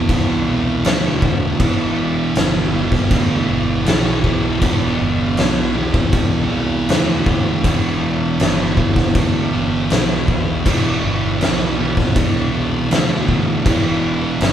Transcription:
Already playing: E2 B2 E3
0.09 C2, kick, crash
0.46 E2 B2 E3
0.84 D2 E2 B2 E3, snare, crash
1.22 kick
1.60 E1 E2 B2 E3, kick, crash
2.35 G1, snare, crash
2.72 E2 B2 E3
2.92 kick, snare
3.11 D2, kick, crash
3.48 G1 E2 B2 E3
3.85 B1 E2 B2 E3, snare, crash
4.24 kick
4.60 E1 E2 B2 E3, kick, crash
5.00 G1
5.37 B1, snare, crash
5.75 E2 B2 E3
5.94 kick
6.13 C2, kick, crash
6.50 E2 B2 E3
6.87 D2 E2 B2 E3, snare, crash
7.26 kick
7.63 E1 E2 B2 E3, kick, crash
8.40 G1, snare, crash
8.77 E2 B2 E3, kick
8.96 kick, snare
9.15 D2, kick, crash
9.52 G1 E2 B2 E3
9.90 B1 E2 B2 E3, snare, crash
10.28 kick
10.65 E1 E2 B2 E3, kick, crash
11.03 G1
11.41 B1, snare, crash
11.78 E2 B2 E3
11.97 kick, snare
12.16 C2, kick, crash
12.53 E2 B2 E3
12.90 D2 E2 B2 E3, snare, crash
13.28 kick
13.65 E1 E2 B2 E3, kick, crash
14.41 G1, snare, crash

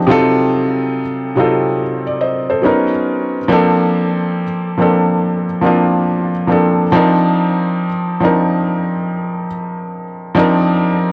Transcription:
0.07 C3 F#3 C4 D#4 F4
0.11 A4
1.36 C3 F#3 C4 D#4 F4
1.40 A4
2.07 D5
2.21 C5 D#5
2.50 A4 C5
2.62 F#3 B3 C#4 D#4
2.66 A#4
3.48 F3 A#3 C4 D4
3.52 A4
4.77 F3 A#3 C4 D4
4.82 A4
5.62 F3 A#3 C4 D4
5.66 F4
6.47 F3 A#3 C4 D4
6.52 A4
6.92 F3 C4 D4 D#4
6.96 A#4
8.20 F3 C4 D4 D#4
8.24 A#4
10.35 F3 C4 D4 D#4
10.39 A#4

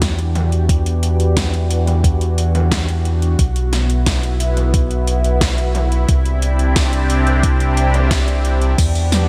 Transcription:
Already playing: E2 E3 B3 D4 F#4 G4
0.02 kick, snare, closed hi-hat
0.19 closed hi-hat
0.35 closed hi-hat, mid tom
0.52 closed hi-hat
0.69 kick, closed hi-hat
0.86 closed hi-hat
1.03 closed hi-hat
1.20 closed hi-hat
1.37 kick, snare, closed hi-hat
1.54 closed hi-hat
1.71 closed hi-hat
1.87 closed hi-hat, mid tom
2.04 kick, closed hi-hat
2.21 closed hi-hat
2.38 closed hi-hat
2.55 closed hi-hat, mid tom
2.71 kick, snare, closed hi-hat
2.88 closed hi-hat
3.05 closed hi-hat
3.22 closed hi-hat
3.39 B1 B3 E4, kick, closed hi-hat
3.56 closed hi-hat
3.73 snare, closed hi-hat
3.90 closed hi-hat
4.06 kick, snare, closed hi-hat
4.23 closed hi-hat
4.40 closed hi-hat
4.57 closed hi-hat, mid tom
4.74 kick, closed hi-hat
4.91 closed hi-hat
5.07 closed hi-hat
5.24 closed hi-hat
5.41 kick, snare, closed hi-hat
5.58 closed hi-hat
5.75 closed hi-hat, mid tom
5.92 closed hi-hat
6.08 C2 C3 C4 D4 G4, kick, closed hi-hat
6.25 closed hi-hat
6.42 closed hi-hat
6.59 closed hi-hat
6.76 kick, snare, closed hi-hat
6.93 closed hi-hat
7.10 closed hi-hat
7.27 closed hi-hat, mid tom
7.43 kick, closed hi-hat
7.60 closed hi-hat
7.77 closed hi-hat
7.94 closed hi-hat, mid tom
8.11 kick, snare, closed hi-hat
8.28 closed hi-hat
8.45 closed hi-hat
8.62 closed hi-hat
8.78 E2 E3 B3 D4 F#4 G4, kick, closed hi-hat, crash, tambourine
8.95 closed hi-hat, tambourine
9.12 snare, closed hi-hat, tambourine

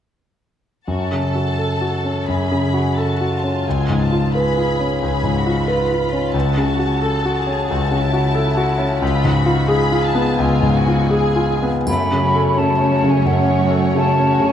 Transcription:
0.88 F#2 F#4 A5
1.12 C#3
1.22 A4
1.35 F#4
1.58 A4
1.81 F#4
2.05 C#4
2.25 F#2 G#4 B5
2.52 C#3
2.74 F#4
2.96 F#4 A4 A5
3.21 F#4
3.30 F4
3.44 C#4
3.66 C#2 G#5
3.90 G#2
4.01 A5
4.12 F4
4.34 G#4 B4 B5
4.57 F4
4.80 C#4
5.02 C#2 G#4 B5
5.24 G#2
5.36 F#4
5.46 F4
5.68 F4 B4
5.92 F4
6.02 F4
6.13 C#4
6.34 C#2 F#4 A5
6.58 C#3
6.79 F#4
7.02 A4
7.25 F#4
7.36 G#4
7.47 C#4
7.69 C#2 F#4 A5
7.91 C#3
8.01 E4
8.13 F#4
8.35 A4
8.57 F#4
8.78 C#4
9.00 C#2 F4 B5
9.25 G#2
9.34 F#4
9.46 F4
9.68 G#4 B5
9.92 F4
10.03 A5
10.15 B3
10.38 C#2 F4 G#5
10.62 G#2
10.76 F#4
10.88 F4
11.11 G#4 G#5
11.36 F4
11.62 B3
11.87 F#2 A3 C#4 F#4 C#5 B5, triangle
12.05 C#4
12.12 C#3
12.23 F#4
12.35 A4
12.40 C#4
12.57 C#3 A3 A5
12.73 C#4
12.81 C#4
12.91 F#4
13.04 C#3
13.08 C#4 G#5
13.25 F#2 A3 F#5
13.43 C#4
13.48 C#4
13.61 F#4
13.70 A4
13.78 C#4
13.95 C#3 A3 A5
14.12 C#4
14.19 C#4
14.29 F#4
14.40 C#3
14.46 C#4 G#5

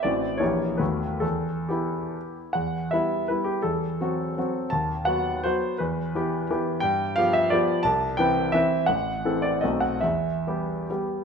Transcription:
0.03 A1 E3 C4 F#4 D5
0.38 A#1 E3 A#3 G4 C#5
0.77 D#2 A3 B3 F#4 B4
1.20 E2 A4
1.69 B3 E4 G4
2.53 E2 F#5
2.91 G3 B3 E4 E5
3.28 G3 B3 E4 B4
3.44 G4
3.62 E2 A4
4.01 F#3 C4 F#4
4.38 F#3 C4 F#4
4.70 D#2 A5
5.05 F#3 B3 F#4 F#5
5.43 F#3 B3 F#4 C5
5.78 E2 B4
6.15 E3 B3 G4
6.51 E3 B3 G4
6.80 G2 G5
7.16 F3 B3 G4 F5
7.33 E5
7.50 F3 B3 G4 D5
7.83 C2 A5
8.17 E3 C4 B4 G5
8.52 E3 C4 B4 E5
8.86 A1 F#5
9.25 E3 C4 A4
9.42 D5
9.61 B1 A3 C4 F#4 D#5
9.80 F#5
10.01 E2 E5
10.47 G3 B3 G4
10.90 G3 B3 G4

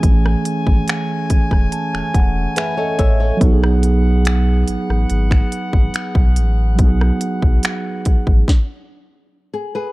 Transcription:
Already playing: E3 A3 C#4 G#4 G#5
0.03 A1, kick, closed hi-hat
0.26 cross-stick
0.45 closed hi-hat
0.67 G#1, kick
0.88 finger snap, closed hi-hat
1.30 E1 G#5, kick, closed hi-hat
1.51 E1, kick, cross-stick
1.72 A5, closed hi-hat
1.93 E1 G#5, finger snap
2.14 E1 F#5, kick, closed hi-hat
2.56 G#4 B4 E5, finger snap, closed hi-hat
2.77 A4 C#5 D#5
2.99 A1 C#5 E5, kick, closed hi-hat
3.20 A4 C#5
3.37 F#3 B3
3.41 B1 B3 D#4 G#4 F#5, kick, closed hi-hat
3.46 F#4
3.53 G#4
3.64 cross-stick
3.83 closed hi-hat
4.25 finger snap, closed hi-hat
4.68 A1, closed hi-hat
4.89 A1, cross-stick
5.10 G#1, closed hi-hat
5.31 finger snap, kick
5.52 closed hi-hat
5.73 G#1, kick
5.94 finger snap, closed hi-hat
6.15 B1, kick
6.36 A1, closed hi-hat
6.75 F#3 B3 F#4, kick, closed hi-hat
6.79 B1 D#4
6.84 G#4
7.01 cross-stick
7.21 closed hi-hat
7.42 B1, kick
7.63 finger snap, closed hi-hat
8.05 A1, kick, closed hi-hat
8.27 A1, kick
8.48 kick, snare
9.54 G#4
9.75 G#4 B4

